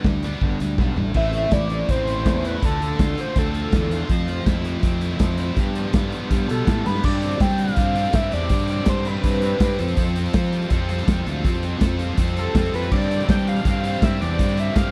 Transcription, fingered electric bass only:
0.04 0.34 D2 medium
0.41 0.56 G1 medium
0.61 0.77 D2 medium
0.78 0.95 B1 medium
0.98 1.14 A1 medium
1.15 1.45 A1 medium
1.52 1.81 A1 medium
1.89 2.26 A1 medium
2.26 2.55 E2 medium
2.63 2.92 D2 medium
2.99 3.14 D2 medium
3.36 3.65 D2 loud
3.73 4.02 E2 loud
4.10 4.39 F2 medium
4.46 4.76 F2 medium
4.83 5.12 F2 medium
5.20 5.49 F2 medium
5.57 5.86 G2 medium
5.94 6.09 G2 medium
6.31 6.46 G2 loud
6.51 6.67 B2 medium
6.67 6.84 A2 medium
6.88 7.04 G2 medium
7.04 7.33 G2 medium
7.41 7.70 G3 medium
7.77 8.07 G2 medium
8.13 8.28 G2 medium
8.33 8.48 E2 medium
8.50 8.79 G2 medium
8.87 9.16 G2 loud
9.24 9.53 G2 medium
9.61 9.76 G2 loud
9.80 9.94 F2 medium
9.97 10.27 F2 loud
10.34 10.64 F3 medium
10.71 11.00 F2 medium
11.08 11.23 F2 medium
11.27 11.41 D2 medium
11.45 11.74 F2 medium
11.81 12.11 F2 loud
12.18 12.47 F2 medium
12.55 12.70 F2 loud
12.73 12.88 F2 medium
12.92 13.21 G2 loud
13.29 13.58 G3 medium
13.65 13.95 G2 medium
14.02 14.17 G2 medium
14.22 14.37 E2 loud
14.40 14.69 G2 medium
14.76 14.91 G2 loud

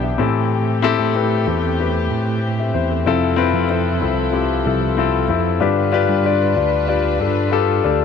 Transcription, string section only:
0.00 0.17 E3 medium
0.00 0.17 B3 medium
0.00 0.15 D4 medium
0.00 0.17 G4 medium
0.18 3.03 A3 medium
0.18 5.57 C4 medium
0.18 3.03 G4 medium
3.05 5.58 F3 medium
3.05 5.58 E4 medium
3.05 5.58 A4 medium
5.60 8.05 G3 medium
5.60 8.05 D4 soft
5.60 8.05 F4 medium
5.60 8.05 B4 medium

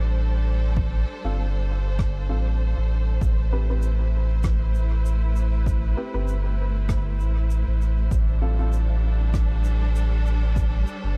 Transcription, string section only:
0.00 3.22 G3 medium
0.00 4.14 D4 medium
0.00 4.41 A4 medium
0.00 11.17 C5 medium
3.22 8.12 A3 medium
3.33 9.82 E4 medium
3.33 8.12 B4 medium
8.11 11.17 G3 medium
8.17 11.17 D4 medium
8.49 11.17 A4 medium

